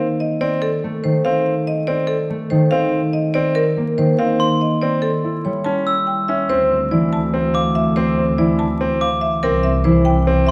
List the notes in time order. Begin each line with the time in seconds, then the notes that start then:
Already playing: D#3 A#3
0.20 D#5
0.41 C4 D5
0.62 A4
0.84 A3
1.04 D#3 C5
1.25 C4 F5
1.67 D#5
1.87 C4 D5
2.07 A4
2.30 A3
2.50 D#3 C5
2.71 C4 F5
3.13 D#5
3.34 C4 D5
3.55 A#4
3.77 A#3
3.98 D#3 C5
4.19 C4 F5
4.40 C6
4.61 D#5
4.81 C4 D5
5.02 A4
5.24 E4
5.45 G3 C#5
5.64 C#4 A5
5.87 E6
6.07 G5
6.28 C#4 E5
6.49 D2 C4 C5
6.71 C4
6.91 E3 E4 D5
7.13 A5
7.34 C4
7.54 F5 D6
7.75 E5
7.96 C4 C5
8.18 C4
8.38 E3 E4 D5
8.59 A5
8.81 C4
9.01 F5 D6
9.21 E5
9.43 C2 C4 A#4
9.63 C4 E5
9.84 E3 E4 C5
10.05 G5
10.27 C4
10.46 E5